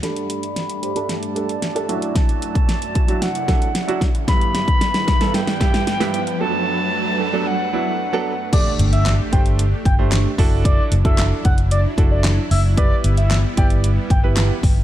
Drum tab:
CC |----------------|----------------|----------------|----------------|
HH |xxxxxxxxxxxxxxxx|xxxxxxxxxxxxxxxx|xxxxxxxxxxxxxxxx|----------------|
CP |----------------|----------------|----------------|----------------|
SD |o---o---o---o---|o---o---o-o-o-o-|o-o-oooooooooo--|----------------|
BD |----------------|o--o--o---o---o-|o--o--o---o-----|----------------|

CC |x---------------|----------------|----------------|
HH |x-xxx-xxx-x-x-o-|x-xxx-xxx-x-x-o-|x-xxx-xxx-x-x-o-|
CP |----x-------x---|----x-------x---|----x-------x---|
SD |----o-------o---|----o-------o---|----o-------o---|
BD |o-----o---o---o-|o--o--o---o-----|o-----o---o---o-|